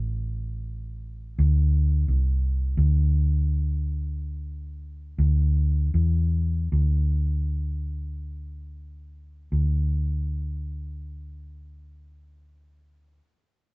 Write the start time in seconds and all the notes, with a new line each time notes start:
Already playing: A1
1.38 D2
2.08 C2
2.77 D2
5.18 D2
5.94 E2
6.72 D2
9.52 D2